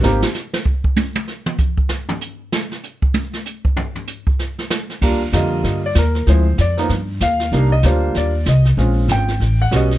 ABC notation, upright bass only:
X:1
M:4/4
L:1/8
Q:"Swing" 1/4=192
K:Eb
V:1 name="Upright bass" clef=bass
A,,, z6 z | z8 | z8 | z8 |
E,,2 F,,2 G,,2 E,,2 | D,,2 F,,2 G,,2 E,,2 | C,,2 D,,2 E,,2 C,,2 | B,,,2 A,,,2 =A,,,2 =B,,,2 |]